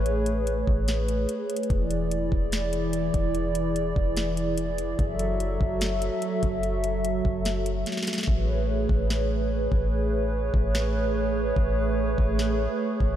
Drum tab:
HH |x-----------x-----------x-----------------------x-----------x-----------x-----------x---x---x---|x-----------x-----------x-----------------------x-----------x-----------x-----------x-----------|x-----------x-----------x-----------------------x-----------x-----------x-----------x-----------|x-----------x-----------x-----------------------x-----------x-----------x-----------x-----------|
SD |------------------------------------------------o-----------------------------------------------|------------------------------------------------o-----------------------------------------------|------------------------------------------------o-----------------------------------------------|------------------------------------------------o-----------------------------------------------|
BD |------------------------------------o-----------------------------------------------------------|o-----------------------------------o-----------------------------------------------o-----------|------------------------------------o-----------------------------------------------------------|o-----------------------------------o-----------------------------------------------o-----------|

HH |x-----------x-----------x-----------------------x-----------x-----------x-----------x---x---x---|------------------------------------------------------------------------------------------------|------------------------------------------------------------------------------------------------|------------------------------------------------------------------------------------------------|
SD |------------------------------------------------o-----------------------o--o--o--o--o--o--o--o--|------------------------------------------------o-----------------------------------------------|------------------------------------------------o-----------------------------------------------|------------------------------------------------o-----------------------------------------------|
BD |------------------------------------o-----------------------------------------------------------|o-----------------------------------o-----------------------------------------------o-----------|------------------------------------o-----------------------------------------------------------|o-----------------------------------o-----------------------------------------------o-----------|